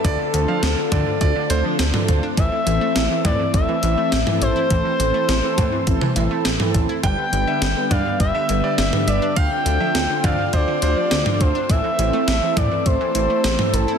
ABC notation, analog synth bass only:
X:1
M:4/4
L:1/16
Q:1/4=103
K:Am
V:1 name="Analog synth bass" clef=bass
D,, z D,, z D,, z D, z D,, z D,, z D,, z D,, z | A,,, z A,,, z A,,, z A,, z A,,, z A,,, z A,,, z A,,, z | A,,, z A,,, z A,,, z A,, z A,,, z A,,, z A,,, z A,,, z | G,,, z G,,, z G,,, z G,, z G,,, z G,,, z G,,, z G,,, z |
D,, z D,, z D,, z D, z D,, z D,, z D,, z D,, z | A,,, z A,,, z A,,, z A,, z A,,, z A,,, z A,,, z A,,, z |]